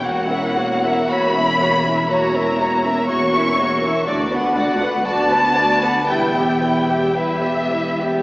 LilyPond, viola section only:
\new Staff \with { instrumentName = "Viola section" } { \time 4/4 \key fis \phrygian \tempo 4 = 59 <ais fis'>16 <cis' e'>16 <ais fis'>16 <cis' e'>16 <ais fis'>16 <cis' e'>16 <ais fis'>16 <cis' e'>16 <ais fis'>16 <cis' e'>16 <ais fis'>16 <cis' e'>16 <ais fis'>16 <cis' e'>16 <ais fis'>16 <cis' e'>16 | <d' fis'>16 <b d'>16 <d' fis'>16 <b d'>16 <d' fis'>16 <b d'>16 <d' fis'>16 <b d'>16 <g e'>16 <b g'>16 <g e'>16 <b g'>16 <g e'>16 <b g'>16 <g e'>16 <b g'>16 | }